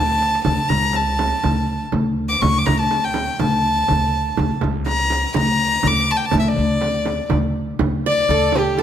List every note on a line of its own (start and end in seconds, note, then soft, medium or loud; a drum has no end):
0.00 0.37 D2 medium
0.00 0.44 A5 loud
0.10 darbuka ka medium
0.22 darbuka tek medium
0.35 darbuka ka medium
0.44 0.56 D2 loud
0.44 0.70 A5 medium
0.44 frame drum medium
0.44 darbuka dum medium
0.59 darbuka ka soft
0.68 1.31 C#2 medium
0.68 0.98 A#5 medium
0.68 frame drum medium
0.68 darbuka dum medium
0.93 1.82 A5 medium
0.93 darbuka tek medium
0.93 frame drum medium
1.19 frame drum medium
1.44 1.85 D2 medium
1.44 frame drum medium
1.44 darbuka dum medium
1.70 darbuka ka soft
1.92 2.33 D2 medium
1.92 frame drum medium
1.92 darbuka dum medium
2.18 darbuka ka soft
2.29 2.42 D6 medium
2.41 2.63 D2 loud
2.41 2.59 C#6 loud
2.41 frame drum loud
2.41 darbuka dum medium
2.56 2.67 D6 medium
2.56 darbuka ka soft
2.66 3.28 D2 medium
2.66 2.81 A#5 medium
2.66 frame drum loud
2.66 darbuka dum medium
2.79 3.06 A5 medium
2.91 darbuka tek medium
2.91 frame drum medium
3.04 3.41 G5 medium
3.14 darbuka tek medium
3.14 frame drum medium
3.40 3.81 D2 medium
3.40 4.52 A5 medium
3.40 frame drum medium
3.40 darbuka dum medium
3.53 darbuka ka soft
3.65 darbuka ka soft
3.88 4.30 D2 medium
3.88 frame drum medium
3.88 darbuka dum medium
4.15 darbuka ka soft
4.37 4.49 D2 loud
4.37 frame drum medium
4.37 darbuka dum medium
4.51 darbuka ka soft
4.61 5.23 C#2 medium
4.61 frame drum medium
4.61 darbuka dum medium
4.86 5.33 A#5 medium
4.86 darbuka tek medium
4.86 frame drum medium
5.10 darbuka tek medium
5.10 frame drum medium
5.34 5.76 D2 medium
5.34 5.88 A#5 loud
5.34 frame drum medium
5.34 darbuka dum medium
5.48 darbuka ka soft
5.61 darbuka ka soft
5.83 6.25 D2 medium
5.83 6.12 D6 loud
5.83 frame drum medium
5.83 darbuka dum loud
6.09 6.18 A5 medium
6.09 darbuka ka soft
6.16 6.27 G5 medium
6.25 6.39 A5 loud
6.31 6.54 D2 loud
6.31 frame drum loud
6.31 darbuka dum medium
6.39 6.49 E5 medium
6.44 7.30 D5 medium
6.44 darbuka ka soft
6.56 7.19 D2 loud
6.56 darbuka dum medium
6.81 darbuka tek medium
6.81 frame drum medium
7.06 darbuka tek medium
7.06 frame drum medium
7.30 7.72 D2 medium
7.30 frame drum loud
7.30 darbuka dum medium
7.44 darbuka ka soft
7.56 darbuka ka soft
7.79 8.21 D2 medium
7.79 frame drum loud
7.79 darbuka dum medium
8.06 8.83 D5 medium
8.06 8.59 D5 loud
8.06 darbuka ka soft
8.19 darbuka ka soft
8.29 8.83 D2 medium
8.29 8.78 A4 medium
8.29 frame drum medium
8.29 darbuka dum medium
8.52 8.83 G4 medium
8.52 frame drum medium
8.52 darbuka dum medium
8.58 8.81 G4 medium
8.78 8.83 A4 medium
8.78 darbuka tek medium
8.78 frame drum medium